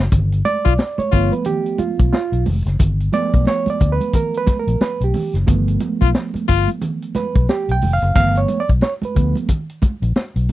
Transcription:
0.12 fingered electric bass G1, kick, closed hi-hat, muted conga, low conga
0.32 closed hi-hat
0.45 reed electric piano D5, closed hi-hat, muted conga, high conga
0.65 fingered electric bass B1, trombone F4, kick, closed hi-hat
0.78 snare, muted conga
0.98 reed electric piano C#5, muted fingered electric bass stroke, closed hi-hat, high conga
1.11 fingered electric bass G1, reed electric piano F3 A3 B3, trombone F4, kick, closed hi-hat, muted conga
1.32 reed electric piano B4, closed hi-hat, high conga
1.45 reed electric piano G4, closed hi-hat, muted conga, low conga
1.66 closed hi-hat
1.78 reed electric piano F4, muted fingered electric bass stroke, closed hi-hat, muted conga, high conga
1.99 fingered electric bass B1, kick, closed hi-hat
2.13 reed electric piano F4, snare, muted conga
2.32 fingered electric bass B1, closed hi-hat
2.46 fingered electric bass F1, open hi-hat, muted conga, high conga, low conga
2.66 fingered electric bass F#1, snare, closed hi-hat
2.79 fingered electric bass G1, kick, closed hi-hat, muted conga, low conga
3.00 closed hi-hat
3.12 reed electric piano F3 A3 B3 D5, closed hi-hat, muted conga, high conga
3.34 fingered electric bass B1, kick, closed hi-hat
3.45 reed electric piano C#5, snare, muted conga
3.66 reed electric piano D5, muted fingered electric bass stroke, closed hi-hat, high conga
3.80 fingered electric bass D2, kick, closed hi-hat, muted conga
3.92 reed electric piano B4
4.00 closed hi-hat, high conga
4.13 reed electric piano A#4, kick, closed hi-hat, low conga
4.34 reed electric piano B4, closed hi-hat
4.47 muted fingered electric bass stroke, kick, snare, closed hi-hat, muted conga, high conga
4.60 reed electric piano A#4
4.67 fingered electric bass A#1, closed hi-hat
4.81 reed electric piano B4, snare, muted conga
5.01 fingered electric bass B1, reed electric piano G4, closed hi-hat
5.14 open hi-hat, muted conga, high conga, low conga
5.34 fingered electric bass F#1, snare, closed hi-hat
5.47 fingered electric bass G1, reed electric piano F3 A3 B3, kick, closed hi-hat, muted conga, low conga
5.68 closed hi-hat
5.80 closed hi-hat, high conga
6.01 fingered electric bass B1, trombone F4, kick, closed hi-hat
6.14 snare
6.34 muted fingered electric bass stroke, closed hi-hat, high conga
6.48 fingered electric bass G1, trombone F4, kick, closed hi-hat, muted conga
6.68 closed hi-hat, high conga
6.82 closed hi-hat, muted conga, low conga
7.02 closed hi-hat
7.15 reed electric piano B4, muted fingered electric bass stroke, snare, closed hi-hat, muted conga, high conga
7.35 fingered electric bass B1, kick, closed hi-hat
7.49 reed electric piano G4, snare, muted conga
7.69 fingered electric bass B1, reed electric piano G5, closed hi-hat
7.82 fingered electric bass F1, open hi-hat, high conga, low conga
7.93 reed electric piano F5
8.02 fingered electric bass F#1, snare, closed hi-hat
8.14 fingered electric bass G1, reed electric piano F3 A3 B3 F5, kick, closed hi-hat, muted conga, low conga
8.36 reed electric piano C#5, closed hi-hat
8.48 closed hi-hat, muted conga, high conga
8.60 reed electric piano D5
8.69 fingered electric bass B1, kick, closed hi-hat
8.81 reed electric piano C#5, snare, muted conga
9.02 reed electric piano B4, muted fingered electric bass stroke, closed hi-hat, high conga
9.15 fingered electric bass D2, reed electric piano F3 A3 B3, kick, closed hi-hat
9.35 closed hi-hat, high conga
9.49 kick, closed hi-hat, muted conga, low conga
9.70 closed hi-hat
9.82 muted fingered electric bass stroke, kick, closed hi-hat, high conga
10.02 fingered electric bass A#1, closed hi-hat
10.16 snare, muted conga
10.36 fingered electric bass B1, closed hi-hat
10.49 open hi-hat

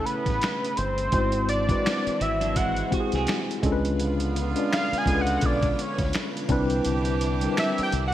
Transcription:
Already playing: string machine C#3 A3 E4, tine electric piano A3 C#4 E4 G#4 C#5 G#5
0.05 analog synth lead B4, closed hi-hat
0.26 fingered electric bass A1, kick, snare, closed hi-hat
0.41 finger snap, snare, closed hi-hat
0.64 closed hi-hat
0.77 fingered electric bass G1, analog synth lead C5, closed hi-hat
0.98 closed hi-hat
1.11 fingered electric bass G#1, string machine E3 C4 F#4, tine electric piano G#3 C4 E4 F#4 C5, kick, closed hi-hat
1.32 closed hi-hat
1.49 analog synth lead D5, closed hi-hat
1.68 tine electric piano G#3 C4 E4 F#4 B4, kick, closed hi-hat
1.86 finger snap, snare, closed hi-hat
2.07 muted fingered electric bass stroke, closed hi-hat
2.20 fingered electric bass G#1, clean electric guitar E3 C4, analog synth lead E5, closed hi-hat
2.41 clean electric guitar F#3 D4, closed hi-hat
2.56 clean electric guitar G#3 E4, analog synth lead F#5, kick, closed hi-hat
2.76 closed hi-hat
2.90 tine electric piano G#3 C4 E4 F#4 G4, clean electric guitar F#4, muted fingered electric bass stroke, kick, closed hi-hat
3.00 tine electric piano G#4
3.12 fingered electric bass C2, clean electric guitar C4 G#4, snare, closed hi-hat
3.27 finger snap, snare, closed hi-hat
3.51 closed hi-hat
3.62 fingered electric bass C#2, string machine D3 B3 F4 B4, tine electric piano G#3 C#4 D4 F4 A4, kick, closed hi-hat
3.72 tine electric piano B4
3.85 closed hi-hat
3.99 horn section D3 B3 F4, closed hi-hat
4.20 closed hi-hat
4.36 closed hi-hat
4.55 tine electric piano G#3 C#4 D4 F4 D5, closed hi-hat
4.73 analog synth lead F5, finger snap, snare, closed hi-hat
4.92 muted fingered electric bass stroke, closed hi-hat
4.98 analog synth lead G#5
5.05 fingered electric bass C#2, tine electric piano G#3 C#4 D4 F4 A4, kick, closed hi-hat
5.15 tine electric piano B4
5.21 analog synth lead F#5
5.27 closed hi-hat
5.41 fingered electric bass B1, kick, closed hi-hat
5.45 analog synth lead D5
5.62 kick, closed hi-hat
5.76 analog synth lead D5, closed hi-hat
5.81 analog synth lead C#5
5.98 fingered electric bass D2, kick, snare, closed hi-hat
6.13 finger snap, snare, closed hi-hat
6.37 closed hi-hat
6.48 fingered electric bass C2, horn section E3 D4 G4, tine electric piano G3 C4 D4 E4 B4, string machine C4 E4, kick, closed hi-hat
6.70 closed hi-hat
6.85 fingered electric bass C2, closed hi-hat
7.05 closed hi-hat
7.21 closed hi-hat
7.41 tine electric piano G3 C4 D4 E4, closed hi-hat
7.45 tine electric piano A#4
7.52 tine electric piano B4
7.57 analog synth lead E5, finger snap, snare, closed hi-hat
7.78 muted fingered electric bass stroke, closed hi-hat
7.83 analog synth lead G5
7.92 fingered electric bass C2, closed hi-hat
8.07 analog synth lead F#5

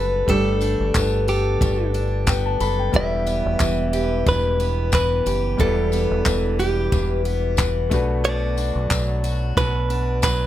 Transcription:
Already playing: fingered electric bass F#1, steel-string acoustic guitar G3 B3 D4 A4, grand piano A3 D4 G4 B4, clean electric guitar B4
0.26 fingered electric bass G1, steel-string acoustic guitar G3 A4, grand piano A3 D4 G4 A4, clean electric guitar A4, kick
0.61 steel-string acoustic guitar D4, tambourine
0.80 fingered electric bass G1
0.94 fingered electric bass G1, steel-string acoustic guitar B3, kick, clap, tambourine
1.28 clean electric guitar G4, steel-string acoustic guitar A4, tambourine
1.61 fingered electric bass G1, steel-string acoustic guitar G3, kick, tambourine
1.94 steel-string acoustic guitar D4, tambourine
2.27 steel-string acoustic guitar B3, grand piano G5, kick, clap, tambourine
2.46 grand piano A5
2.60 fingered electric bass F#1, steel-string acoustic guitar A4, grand piano B5, tambourine
2.79 grand piano G5
2.92 fingered electric bass E1, steel-string acoustic guitar E2 G4, grand piano G3 B3 E4, kick, tambourine
2.96 grand piano B4, clean electric guitar E5
3.26 steel-string acoustic guitar B3, tambourine
3.46 fingered electric bass E1
3.60 fingered electric bass E1, steel-string acoustic guitar E3, kick, clap, tambourine
3.93 steel-string acoustic guitar G4, tambourine
4.26 fingered electric bass E1, steel-string acoustic guitar E2, clean electric guitar B4, kick, tambourine
4.60 steel-string acoustic guitar B3, tambourine
4.92 steel-string acoustic guitar E3, clean electric guitar B4, kick, clap, tambourine
5.26 fingered electric bass F#1, steel-string acoustic guitar G4, tambourine
5.57 fingered electric bass E1, steel-string acoustic guitar E2 G4, grand piano G3 B3 E4, clean electric guitar A4, kick, tambourine
5.62 grand piano B4
5.92 steel-string acoustic guitar B3, tambourine
6.11 fingered electric bass E1
6.25 fingered electric bass E1, steel-string acoustic guitar E3, kick, clap, tambourine
6.59 clean electric guitar G4, steel-string acoustic guitar G4, tambourine
6.92 fingered electric bass E1, steel-string acoustic guitar E2, kick, tambourine
7.25 steel-string acoustic guitar B3, tambourine
7.57 steel-string acoustic guitar E3, kick, clap, tambourine
7.90 fingered electric bass B1, steel-string acoustic guitar B2, grand piano A3 D4 F#4 B4, kick, tambourine
8.24 steel-string acoustic guitar B2 F#4, clean electric guitar D5
8.57 steel-string acoustic guitar D4, tambourine
8.76 fingered electric bass B1
8.91 fingered electric bass B1, steel-string acoustic guitar F#3, kick, clap, tambourine
9.24 steel-string acoustic guitar F#4, tambourine
9.57 fingered electric bass B1, steel-string acoustic guitar B2, clean electric guitar B4, kick, tambourine
9.90 steel-string acoustic guitar D4, tambourine
10.22 steel-string acoustic guitar F#3, clean electric guitar B4, kick, clap, tambourine

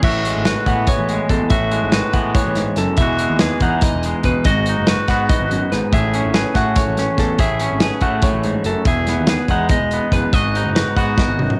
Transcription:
0.03 picked electric bass A1, clean electric guitar A2 F#4 E5, kick, crash
0.25 clean electric guitar G#3, closed hi-hat
0.36 picked electric bass G#1
0.45 clean electric guitar F#4 B4, snare, closed hi-hat
0.66 picked electric bass A2, clean electric guitar E3 B3 F#5, kick, closed hi-hat
0.87 clean electric guitar C#5, kick, closed hi-hat
0.99 picked electric bass A1
1.09 clean electric guitar G#3, closed hi-hat
1.29 picked electric bass A1, clean electric guitar E2 A4, kick, closed hi-hat
1.50 picked electric bass A1, clean electric guitar A2 F#4 E5, kick, closed hi-hat
1.71 clean electric guitar G#3, closed hi-hat
1.82 picked electric bass G#1
1.92 clean electric guitar F#4 B4, snare, closed hi-hat
2.13 picked electric bass A2, clean electric guitar E3 B3 F#5, kick, closed hi-hat
2.34 clean electric guitar A2 C#5, kick, closed hi-hat
2.46 picked electric bass A1
2.55 clean electric guitar G#2, snare, closed hi-hat
2.76 picked electric bass F#1, clean electric guitar F#2 A4, snare, closed hi-hat
2.97 picked electric bass E1, clean electric guitar E2 E3 E5, kick, closed hi-hat
3.01 clean electric guitar G#3 F#4
3.19 clean electric guitar G#3, closed hi-hat
3.30 picked electric bass D#2
3.39 clean electric guitar G#4 B4, snare, closed hi-hat
3.60 picked electric bass E2, clean electric guitar E3 D#4 F#5, kick, closed hi-hat
3.81 clean electric guitar D#5, kick, snare, closed hi-hat
3.94 picked electric bass E1
4.03 clean electric guitar G#3, closed hi-hat
4.23 picked electric bass E1, clean electric guitar B2 B4, kick, closed hi-hat
4.44 picked electric bass G#1, clean electric guitar G#2 F#4 D#5, kick, closed hi-hat
4.66 clean electric guitar D#4, closed hi-hat
4.78 picked electric bass F#1
4.87 clean electric guitar F#4 B4, snare, closed hi-hat
5.08 picked electric bass G#2, clean electric guitar B3 F#4 F#5, kick, snare, closed hi-hat
5.29 clean electric guitar E2 D#5, kick, closed hi-hat
5.40 picked electric bass G#1
5.51 clean electric guitar F#2, closed hi-hat
5.72 picked electric bass G#1, clean electric guitar G#2 B4, snare, closed hi-hat
5.92 picked electric bass A1, clean electric guitar A2 G#4 E5, kick, closed hi-hat
6.14 clean electric guitar C#4, closed hi-hat
6.25 picked electric bass G#1
6.34 clean electric guitar G#4 B4, snare, closed hi-hat
6.55 picked electric bass A2, clean electric guitar A3 F#4 F#5, kick, snare, closed hi-hat
6.76 clean electric guitar C#5, kick, snare, closed hi-hat
6.88 picked electric bass A1
6.97 clean electric guitar C#4, snare, closed hi-hat
7.17 picked electric bass A1, clean electric guitar E2 A4, kick, snare, closed hi-hat
7.39 picked electric bass A1, clean electric guitar A2 G#4 E5, kick, closed hi-hat
7.60 clean electric guitar C#4, closed hi-hat
7.71 picked electric bass G#1
7.80 clean electric guitar G#4 B4, snare, closed hi-hat
8.01 picked electric bass A2, clean electric guitar A3 F#4 F#5, kick, closed hi-hat
8.22 clean electric guitar A2 C#5, kick, closed hi-hat
8.33 picked electric bass A1
8.43 clean electric guitar G#2, closed hi-hat
8.64 picked electric bass F#1, clean electric guitar F#2 A4, closed hi-hat
8.85 picked electric bass E1, clean electric guitar E2 G#4 E5, kick, closed hi-hat
9.07 clean electric guitar B3, snare, closed hi-hat
9.17 picked electric bass D#2
9.27 clean electric guitar G#4 B4, snare, closed hi-hat
9.48 picked electric bass E2, clean electric guitar G#3 D#4 F#5, kick, closed hi-hat
9.69 clean electric guitar D#5, kick, closed hi-hat
9.80 picked electric bass E1
9.91 clean electric guitar B3, closed hi-hat
10.12 picked electric bass F#1, clean electric guitar E2 B4, kick, closed hi-hat
10.33 picked electric bass G#1, clean electric guitar G#2 F#4 D#5, kick, closed hi-hat
10.55 clean electric guitar D#4, closed hi-hat
10.65 picked electric bass F#1
10.75 clean electric guitar F#4 B4, snare, closed hi-hat
10.96 picked electric bass G#2, clean electric guitar B3 F#4 F#5, kick, closed hi-hat
11.18 clean electric guitar E2 D#5, kick, snare
11.28 picked electric bass G#1
11.39 clean electric guitar F#2, high tom
11.50 mid tom

